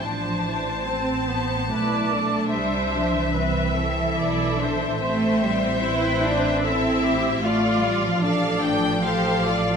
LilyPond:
<<
  \new Staff \with { instrumentName = "Violin section" } { \time 3/4 \key a \minor \tempo 4 = 74 a''2. | e''2. | e''2 e''4 | f''4 f''8 g''8 f''4 | }
  \new Staff \with { instrumentName = "Viola section" } { \time 3/4 \key a \minor << { c''2 b'8 a'8 | e''4 e''4 d''8 c''8 | c''2 e''4 | d''4 d''4 c''8 d''8 | } \\ { r2 d''4 | c''4 b'8 a'4. | c''4 b'4 a'8 g'8 | f'4 a'4 a'4 | } >> }
  \new Staff \with { instrumentName = "Violin section" } { \time 3/4 \key a \minor d'4 c'4 e'8 d'8~ | d'4 c'4 e'8 d'8 | c'2 e'4 | f'4 d'4 g'8 f'8 | }
  \new Staff \with { instrumentName = "Cello section" } { \clef bass \time 3/4 \key a \minor f8 e8 c'8 b8 a4 | g8 f16 e2~ e16 | a8 g8 e'8 d'8 c'4 | a8 g16 f2~ f16 | }
  \new Staff \with { instrumentName = "Double bass section" } { \clef bass \time 3/4 \key a \minor a,,2 b,,4 | c,2 b,,4 | a,,2. | a,,2. | }
>>